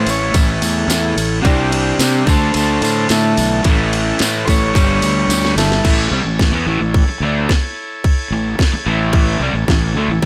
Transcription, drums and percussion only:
0.07 ride, tambourine
0.34 kick, ride, tambourine
0.62 ride, tambourine
0.90 snare, ride, tambourine
1.18 ride, tambourine
1.45 kick, ride, tambourine
1.72 ride
1.99 snare, ride, tambourine
2.27 kick, ride, tambourine
2.54 ride, tambourine
2.82 ride, tambourine
3.09 snare, ride, tambourine
3.37 ride, tambourine
3.64 kick, ride, tambourine
3.93 ride, tambourine
4.19 snare, ride, tambourine
4.48 kick, ride, tambourine
4.75 kick, ride, tambourine
5.02 ride, tambourine
5.30 snare, ride, tambourine
5.45 snare
5.58 snare, ride, tambourine
5.72 snare
5.85 kick, crash
6.39 kick, snare, crash
6.94 kick, crash
7.49 kick, snare, crash
8.04 kick, crash
8.59 kick, snare, crash
9.13 kick, crash
9.68 kick, snare, crash

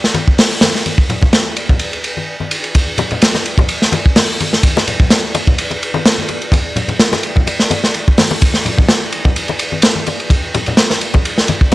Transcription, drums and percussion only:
0.04 snare
0.14 ride, high conga
0.28 kick
0.38 snare, open hi-hat
0.52 ride
0.61 snare, ride, high conga
0.75 snare
0.86 ride, high conga
0.98 kick
1.10 ride, low conga
1.21 kick, low conga
1.33 snare, ride
1.56 ride
1.69 kick, low conga
1.79 ride
1.93 ride
2.04 ride
2.17 high conga
2.40 high conga
2.51 ride
2.64 ride
2.75 kick, ride, muted conga, high conga
2.98 ride, muted conga, low conga
3.11 ride, low conga
3.22 snare, ride
3.34 snare, muted conga
3.46 ride
3.58 kick, muted conga, low conga
3.69 ride
3.82 snare
3.92 ride, muted conga, high conga
4.06 kick
4.16 snare, open hi-hat, muted conga
4.30 ride
4.40 ride, high conga
4.53 snare, muted conga
4.63 kick, ride, high conga
4.77 snare, muted conga
4.87 ride, low conga
5.00 kick, low conga
5.10 snare, ride, muted conga
5.35 ride, muted conga
5.47 kick, low conga
5.58 ride
5.71 ride, muted conga
5.83 ride
5.94 muted conga, high conga
6.06 snare, ride
6.18 high conga
6.28 ride, muted conga
6.42 ride
6.52 kick, ride, muted conga, high conga
6.76 ride, low conga
6.88 ride, muted conga, low conga
7.00 snare, ride
7.12 snare, muted conga
7.23 ride
7.36 kick, low conga
7.47 ride, muted conga
7.60 snare
7.70 ride, muted conga, high conga
7.84 snare
7.94 ride
8.08 kick, muted conga
8.18 snare, open hi-hat, high conga
8.31 ride, muted conga
8.41 kick, ride, high conga
8.54 snare
8.65 ride, muted conga, low conga
8.78 kick, low conga
8.89 snare, ride, muted conga
9.12 ride
9.25 kick, muted conga, low conga
9.36 ride
9.48 ride, muted conga
9.59 ride
9.72 high conga
9.82 snare, ride, muted conga
9.95 high conga
10.06 ride, muted conga
10.20 ride
10.30 kick, ride, muted conga, high conga
10.54 ride, muted conga, low conga
10.66 ride, low conga
10.77 snare, ride
10.90 snare, muted conga
11.01 ride
11.14 kick, muted conga, low conga
11.25 ride
11.38 snare
11.48 ride, muted conga, high conga
11.61 kick
11.72 open hi-hat

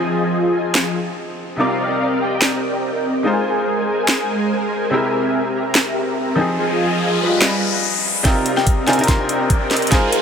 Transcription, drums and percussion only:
0.75 snare, clap
2.42 snare, clap
4.08 snare, clap
5.75 snare, clap
7.42 snare, clap
8.25 kick, snare, closed hi-hat
8.46 closed hi-hat
8.57 snare
8.67 kick, closed hi-hat
8.87 snare, closed hi-hat
8.93 closed hi-hat
8.99 closed hi-hat
9.04 closed hi-hat
9.08 kick, snare, closed hi-hat
9.29 closed hi-hat
9.50 kick, closed hi-hat
9.71 snare, closed hi-hat
9.77 closed hi-hat
9.82 closed hi-hat
9.87 closed hi-hat
9.92 kick, snare, closed hi-hat
10.12 closed hi-hat

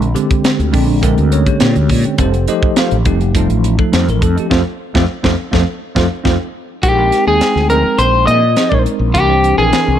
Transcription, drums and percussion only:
0.02 closed hi-hat
0.16 closed hi-hat
0.30 kick, closed hi-hat
0.44 snare, closed hi-hat
0.60 closed hi-hat
0.73 kick, open hi-hat
1.03 kick, closed hi-hat
1.18 closed hi-hat
1.32 closed hi-hat
1.46 kick, closed hi-hat
1.60 snare, closed hi-hat
1.75 closed hi-hat
1.89 kick, open hi-hat
2.04 closed hi-hat
2.18 kick, closed hi-hat
2.34 closed hi-hat
2.48 closed hi-hat
2.63 kick
2.76 snare, closed hi-hat
2.91 closed hi-hat
3.05 kick, closed hi-hat
3.21 closed hi-hat
3.35 kick, closed hi-hat
3.50 closed hi-hat
3.64 closed hi-hat
3.79 kick
3.93 snare, closed hi-hat
4.09 closed hi-hat
4.22 kick, closed hi-hat
4.38 closed hi-hat
4.51 kick, snare
4.95 kick, snare
5.24 kick, snare
5.53 kick, snare
5.96 kick, snare
6.25 kick, snare
6.83 kick, closed hi-hat
7.12 snare, closed hi-hat
7.41 snare, closed hi-hat
7.56 snare
7.70 closed hi-hat
7.99 closed hi-hat
8.28 closed hi-hat
8.56 snare, closed hi-hat
8.72 kick
8.86 closed hi-hat
9.15 kick, closed hi-hat
9.44 closed hi-hat
9.73 snare, closed hi-hat

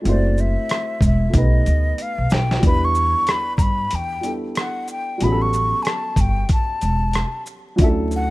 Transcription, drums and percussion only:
0.05 closed hi-hat
0.38 shaker
0.69 cross-stick, closed hi-hat
1.01 kick, closed hi-hat, shaker
1.34 kick, closed hi-hat
1.66 closed hi-hat, shaker
1.98 closed hi-hat
2.30 snare, shaker
2.51 snare
2.63 kick, closed hi-hat
2.95 shaker
3.27 cross-stick, closed hi-hat
3.58 kick, closed hi-hat, shaker
3.91 closed hi-hat
4.23 closed hi-hat, shaker
4.55 cross-stick, closed hi-hat
4.88 shaker
5.21 closed hi-hat
5.53 shaker
5.85 cross-stick, closed hi-hat
6.16 kick, closed hi-hat, shaker
6.49 kick, closed hi-hat
6.81 closed hi-hat, shaker
7.13 cross-stick, closed hi-hat
7.46 shaker
7.78 kick, closed hi-hat
8.11 shaker

